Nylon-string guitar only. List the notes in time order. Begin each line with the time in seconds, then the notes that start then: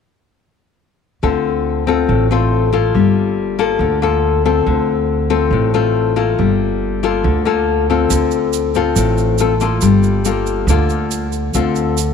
1.23 D3 C4 F4 A4
1.87 C4 F4 A4
2.09 A2
2.31 C4 F4 A4
2.73 A#3 F4 A4
2.95 G3
3.59 A#3 F4 A4
3.81 D3
4.02 A#3 F4 A4
4.45 C4 F4 A4
4.67 D3
5.30 C4 F4 A4
5.53 A2
5.74 C4 F4 A4
6.16 A#3 F4 A4
6.39 G3
7.03 A#3 F4 A4
7.24 D3
7.45 A#3 F4 A4
7.90 C4 F4 A4
8.10 D3
8.75 C4 F4 A4
8.97 A2
9.40 C4 F4 A4
9.61 A#3 F4 A4
9.82 G3
10.25 A#3 F4 A4
10.69 D3 A#3 F4 A4
11.55 D3 C4 F4 A4